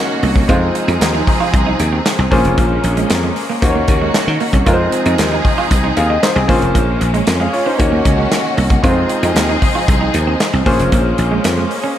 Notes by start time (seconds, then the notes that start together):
Already playing: D#3 A#3 C#4 D#4 F#4 C#5
0.23 C2 A#3, open hi-hat
0.36 A#3, kick
0.48 F2 F3 G#3 C4 D#4 F4 G#4 C5, kick, closed hi-hat
0.75 muted clean electric guitar stroke, closed hi-hat
0.88 F2 D#4, closed hi-hat
1.01 D#2, snare, clap, closed hi-hat
1.15 D#4
1.27 muted clean electric guitar stroke, kick, open hi-hat
1.40 F4
1.54 C2, kick, closed hi-hat
1.67 D#4
1.80 D#2, muted clean electric guitar stroke, closed hi-hat
1.93 C4
2.06 muted clean electric guitar stroke, snare, clap, closed hi-hat
2.19 C2 C4
2.31 A#1 G#3 A#3 C#4 F4 G#4 C5, kick, open hi-hat
2.45 F1, closed hi-hat
2.58 A#1 A#3, kick, closed hi-hat
2.84 A#1, muted clean electric guitar stroke, closed hi-hat
2.97 G#3, closed hi-hat
3.10 F2, snare, clap, closed hi-hat
3.24 G#3
3.36 muted clean electric guitar stroke, open hi-hat
3.49 A#3
3.62 D#2 D#3 A#3 C#4 D#4 F#4 C5, kick, closed hi-hat
3.70 C#5
3.75 A#3
3.88 D#2, muted clean electric guitar stroke, kick, closed hi-hat
4.02 G#3
4.14 muted clean electric guitar stroke, snare, clap, closed hi-hat
4.28 D#3
4.40 A#3, open hi-hat
4.53 C2 C#4, kick, closed hi-hat
4.66 F2 F3 G#3 C4 D#4 F4 G#4 A#4, kick, closed hi-hat
4.74 C5
4.92 muted clean electric guitar stroke, closed hi-hat
5.06 F2 D#4, closed hi-hat
5.18 D#2, snare, clap, closed hi-hat
5.32 D#4
5.45 muted clean electric guitar stroke, kick, open hi-hat
5.58 F4
5.71 C2, kick, closed hi-hat
5.84 D#4
5.97 D#2 G#4 F5, muted clean electric guitar stroke, closed hi-hat
6.10 C4 D#5
6.23 D#4 C5, muted clean electric guitar stroke, snare, clap, closed hi-hat
6.36 C2 C4 G#4
6.48 A#1 G#3 A#3 C#4 F4 G#4 C5, kick, open hi-hat
6.62 F1, closed hi-hat
6.75 A#1 A#3, kick, closed hi-hat
7.01 A#1, muted clean electric guitar stroke, closed hi-hat
7.14 G#3, closed hi-hat
7.27 F2, snare, clap, closed hi-hat
7.40 G#3 G#4 F5
7.53 F4 C#5, muted clean electric guitar stroke, open hi-hat
7.66 C#4 D#4 C5
7.78 D#2 D#3 A#3 C#4 D#4 F#4 C#5, kick, closed hi-hat
7.92 A#3
8.05 C#2, muted clean electric guitar stroke, kick, closed hi-hat
8.18 G#3
8.31 muted clean electric guitar stroke, snare, clap, closed hi-hat
8.57 C2 A#3, open hi-hat
8.70 A#3, kick, closed hi-hat
8.83 F2 F3 G#3 C4 D#4 F4 G#4 C5, kick, closed hi-hat
9.09 muted clean electric guitar stroke, closed hi-hat
9.23 F2 D#4, closed hi-hat
9.36 D#2, snare, clap, closed hi-hat
9.49 D#4
9.62 muted clean electric guitar stroke, kick, open hi-hat
9.75 F4
9.88 C2, kick, closed hi-hat
10.01 D#4
10.14 D#2, muted clean electric guitar stroke, closed hi-hat
10.27 C4
10.40 muted clean electric guitar stroke, snare, clap, closed hi-hat
10.53 C2 C4
10.65 A#1 G#3 A#3 C#4 F4 G#4 C5, kick, open hi-hat
10.79 F1, closed hi-hat
10.92 A#1 A#3, kick, closed hi-hat
11.18 A#1, muted clean electric guitar stroke, closed hi-hat
11.32 G#3
11.44 F2, snare, clap, closed hi-hat
11.58 G#3
11.71 muted clean electric guitar stroke, open hi-hat
11.84 C#4